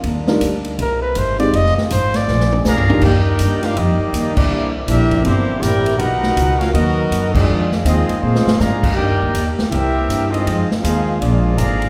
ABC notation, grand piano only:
X:1
M:4/4
L:1/8
Q:"Swing" 1/4=161
K:Eb
V:1 name="Grand piano"
z [G,DEFB] z4 z [A,CEFG] | z6 z [B,DEFG] | z8 | z8 |
z8 | z8 | z8 | z8 |]